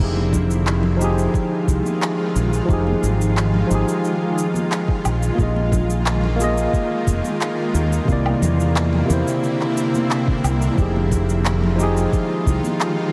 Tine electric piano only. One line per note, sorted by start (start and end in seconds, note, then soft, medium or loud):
0.00 0.95 F3 medium
0.00 0.96 D#4 medium
0.00 0.97 G4 medium
0.00 0.99 G#4 medium
0.97 2.63 F3 medium
0.97 2.64 D#4 medium
1.02 2.66 G4 medium
1.02 2.67 G#4 loud
2.65 3.64 F3 medium
2.65 3.66 D#4 medium
2.71 3.67 G4 medium
2.71 3.68 G#4 medium
3.67 5.01 F3 medium
3.67 5.03 D#4 medium
3.72 5.04 G4 medium
3.72 5.05 G#4 loud
5.35 6.34 A#3 medium
5.35 6.35 F4 medium
5.40 6.37 G#4 medium
5.40 6.38 D#5 medium
6.36 8.02 A#3 medium
6.36 8.04 F4 medium
6.42 8.05 G#4 medium
6.42 8.06 D#5 loud
8.05 9.04 C3 medium
8.05 9.05 A#3 medium
8.10 9.06 E4 medium
8.10 9.07 D5 loud
9.05 10.72 C3 medium
9.05 10.73 A#3 medium
9.11 10.75 E4 medium
9.11 10.76 C5 medium
10.74 11.73 F3 medium
10.74 11.75 D#4 medium
10.80 11.76 G4 medium
10.80 11.77 G#4 medium
11.75 13.12 F3 medium
11.75 13.12 D#4 medium
11.81 13.12 G4 medium
11.81 13.12 G#4 loud